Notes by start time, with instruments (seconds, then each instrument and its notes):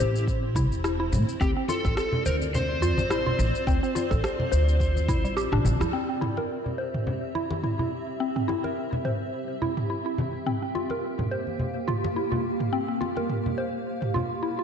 Already playing: ambient pad C4 E4 C5, electric slide guitar G4
0.00 upright bass A1, synth pluck C5, shaker
0.16 shaker
0.27 kick, shaker
0.55 upright bass C2, synth pluck E4, kick, low conga, shaker
0.72 upright bass E1, shaker
0.84 synth pluck E4, cross-stick, shaker
1.00 synth pluck E4
1.12 upright bass A2, high conga, low conga, shaker
1.29 shaker
1.41 upright bass D2, synth pluck C4, ambient pad C4 F4 D5, electric slide guitar G4, kick, shaker
1.57 synth pluck C4
1.69 synth pluck F4, electric slide guitar A4, muted conga, shaker
1.85 upright bass A1, synth pluck A4, kick, muted conga, shaker
1.97 electric slide guitar A4, cross-stick, shaker
2.13 low conga
2.26 upright bass D2, electric slide guitar A#4, synth pluck C5, shaker
2.41 high conga, shaker
2.55 electric slide guitar C5, low conga, shaker
2.82 upright bass F2, synth pluck F4, muted conga, shaker
2.98 upright bass A1, muted conga, high conga, shaker
3.10 synth pluck E4, cross-stick, shaker
3.26 synth pluck F4, low conga
3.39 upright bass A1, shaker
3.55 shaker
3.67 upright bass D2, synth pluck C4, kick, shaker
3.83 synth pluck C4, shaker
3.95 synth pluck F4, muted conga, shaker
4.11 upright bass A1, synth pluck A4, kick, muted conga, shaker
4.24 cross-stick, shaker
4.40 muted conga, low conga
4.52 upright bass D2, synth pluck C5, shaker
4.69 shaker
4.80 kick, shaker
4.96 high conga, shaker
5.08 upright bass F2, synth pluck E4, kick, low conga, shaker
5.24 upright bass A1, synth pluck G3, shaker
5.37 synth pluck G4, cross-stick, shaker
5.52 upright bass A1, synth pluck D4, cross-stick
5.64 upright bass A1, high conga, low conga, shaker
5.80 upright bass F2, synth pluck E4, cross-stick, shaker
5.93 synth pluck C4, ambient pad C4 G4 E5
6.09 synth pluck C4
6.21 synth pluck E4, mid tom, muted conga
6.37 synth pluck A#4, muted conga
6.66 low conga
6.78 synth pluck C5
6.94 mid tom, high conga
7.07 low conga
7.35 synth pluck E4, muted conga
7.51 muted conga, high conga
7.63 synth pluck E4, mid tom
7.79 synth pluck E4, low conga
8.20 synth pluck C4
8.36 synth pluck C4, mid tom
8.48 synth pluck E4, muted conga
8.64 synth pluck A#4, muted conga
8.93 low conga
9.05 synth pluck C5, mid tom
9.62 synth pluck E4, low conga
9.77 mid tom
9.90 synth pluck E4
10.06 synth pluck E4
10.18 high conga, low conga
10.46 ambient pad A#3 F5, synth pluck C4, mid tom
10.62 synth pluck C4
10.75 synth pluck F4, muted conga
10.90 synth pluck A#4, muted conga
11.19 mid tom, low conga
11.31 synth pluck C5
11.47 high conga
11.59 low conga
11.88 synth pluck F4, mid tom, muted conga
12.04 muted conga, high conga
12.16 synth pluck E4
12.32 synth pluck F4, low conga
12.60 mid tom
12.73 synth pluck C4
12.88 synth pluck C4
13.01 synth pluck F4, muted conga
13.17 synth pluck A#4, muted conga
13.30 mid tom
13.46 low conga
13.58 synth pluck C5
14.02 mid tom
14.14 synth pluck F4, low conga
14.43 synth pluck E4
14.59 synth pluck F4